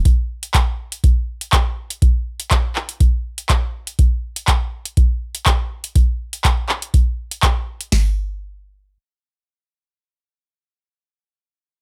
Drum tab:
HH |x--xx--xx--xx--x|x--xx--xx--xx--x|x--xx--xx--xx--x|x--xx--xx--xx--x|
CP |----x-------x---|----x-x-----x---|----x-------x---|----x-x-----x---|
SD |----------------|----------------|----------------|----------------|
BD |o---o---o---o---|o---o---o---o---|o---o---o---o---|o---o---o---o---|

HH |o---------------|----------------|
CP |----------------|----------------|
SD |o---------------|----------------|
BD |o---------------|----------------|